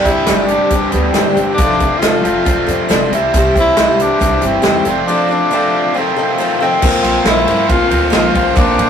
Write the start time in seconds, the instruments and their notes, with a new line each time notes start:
Already playing: overdriven electric guitar G2 D3 G3 C4 D4 G4
0.05 upright bass G1, twelve-string acoustic guitar C4 D4 G4, tenor saxophone E4, kick, closed hi-hat
0.10 twelve-string acoustic guitar G3
0.27 upright bass G1, twelve-string acoustic guitar G2 D3 G3 C4 D4 G4, snare, closed hi-hat
0.46 overdriven electric guitar G3 D4 G4, tenor saxophone D4, closed hi-hat
0.51 overdriven electric guitar G2 D3 C4
0.70 upright bass G1, twelve-string acoustic guitar G3 C4 D4, kick, closed hi-hat
0.75 twelve-string acoustic guitar G4
0.91 upright bass D2, tenor saxophone B3, twelve-string acoustic guitar C4 D4 G4, closed hi-hat
0.96 twelve-string acoustic guitar G3
1.10 tenor saxophone C4
1.14 upright bass G1, twelve-string acoustic guitar G2 D3 G3 C4 D4 G4, snare, closed hi-hat
1.33 tenor saxophone C4, twelve-string acoustic guitar D4 G4, closed hi-hat
1.37 upright bass G1, twelve-string acoustic guitar G3 C4
1.54 tenor saxophone D4, closed hi-hat
1.58 upright bass F1, overdriven electric guitar F2 C3 F3 A3 C4 F4, twelve-string acoustic guitar F3 C4 D4 A4, kick
1.79 twelve-string acoustic guitar C4 D4 A4, kick, closed hi-hat
1.98 upright bass F1, twelve-string acoustic guitar F3, tenor saxophone F4, closed hi-hat
2.03 twelve-string acoustic guitar C4 D4 A4, snare
2.24 upright bass F1, overdriven electric guitar F2 C3 F3 A3 C4 F4, closed hi-hat
2.45 upright bass F1, twelve-string acoustic guitar F3 C4 D4 A4, kick, closed hi-hat
2.67 upright bass F2, twelve-string acoustic guitar C4 D4 A4, closed hi-hat
2.89 upright bass F1, twelve-string acoustic guitar F3 C4 D4 A4, snare, closed hi-hat
3.11 upright bass C2, overdriven electric guitar C3 E3 G3 C4 E4, twelve-string acoustic guitar E4 G4, closed hi-hat
3.16 twelve-string acoustic guitar C4
3.34 upright bass C2, twelve-string acoustic guitar C3 G3 C4 E4 G4, tonewheel organ G4 C5 E5 C6, kick, closed hi-hat
3.55 upright bass C2, twelve-string acoustic guitar C4 E4 G4, kick, closed hi-hat
3.60 tenor saxophone E4
3.77 upright bass C2, twelve-string acoustic guitar C3 G3 C4 E4 G4, overdriven electric guitar C3 E3 G3 C4 E4, snare, closed hi-hat
4.00 tenor saxophone D4, closed hi-hat
4.19 upright bass C2, twelve-string acoustic guitar G3 C4 E4 G4, kick, closed hi-hat
4.41 upright bass G1, twelve-string acoustic guitar C4 E4 G4, closed hi-hat
4.46 tenor saxophone C4
4.62 upright bass E2, twelve-string acoustic guitar C3 G3 C4 E4 G4, snare, closed hi-hat
4.84 upright bass F1, overdriven electric guitar F2 C3 F3 A3 C4, twelve-string acoustic guitar D4 A4, tonewheel organ A4 D5 F5, closed hi-hat
4.88 twelve-string acoustic guitar C4, overdriven electric guitar F4
5.07 twelve-string acoustic guitar F3 C4 D4 A4, tenor saxophone D4
5.28 twelve-string acoustic guitar C4 D4 A4, tenor saxophone D4
5.51 overdriven electric guitar F2 C3 F3 A3 C4 F4, twelve-string acoustic guitar F3 C4 D4 A4
5.94 overdriven electric guitar F2 C3 D#3 A3 C4 F4, twelve-string acoustic guitar F3 C4 D#4, tenor saxophone C4, tonewheel organ D#5
5.99 twelve-string acoustic guitar A4
6.16 twelve-string acoustic guitar C4 D#4 A4
6.38 twelve-string acoustic guitar F3 C4 D#4 A4
6.60 overdriven electric guitar F2 C3 D#3 A3 C4 F4, tenor saxophone C4, twelve-string acoustic guitar C4 D#4 A4
6.79 upright bass A#1, overdriven electric guitar A#2 F3 A#3 C4, tonewheel organ A#4 C5 C6, kick, crash
6.84 twelve-string acoustic guitar A#3 C4 F4 A#4, overdriven electric guitar F4
7.03 upright bass A#1, overdriven electric guitar A#3 C4 F4, ride
7.24 upright bass A#1, overdriven electric guitar F3 A#3 C4 F4, twelve-string acoustic guitar A#3 C4 F4 A#4, tenor saxophone E4, snare, ride
7.46 upright bass G2, overdriven electric guitar A#2 F3 A#3 C4 F4, twelve-string acoustic guitar A#4, ride
7.50 twelve-string acoustic guitar C4 F4
7.67 upright bass A#1, overdriven electric guitar F3 A#3 C4 F4, twelve-string acoustic guitar A#3, kick, ride
7.71 twelve-string acoustic guitar C4 F4 A#4, tenor saxophone F4
7.89 upright bass D2, overdriven electric guitar A#3 C4 F4, twelve-string acoustic guitar A#4, ride
7.93 twelve-string acoustic guitar C4 F4
8.10 upright bass A#1, overdriven electric guitar A#2 F3 A#3 C4, twelve-string acoustic guitar A#3 C4 F4 A#4, snare, ride
8.14 overdriven electric guitar F4, tenor saxophone F4
8.34 upright bass A#1, overdriven electric guitar A#3 C4 F4, kick, ride
8.56 upright bass A#1, overdriven electric guitar A#2 F3 A#3 C4 F4, twelve-string acoustic guitar A#3 C4 F4 A#4, tenor saxophone D4, kick, ride
8.78 upright bass A#2, overdriven electric guitar A#3 C4 F4, ride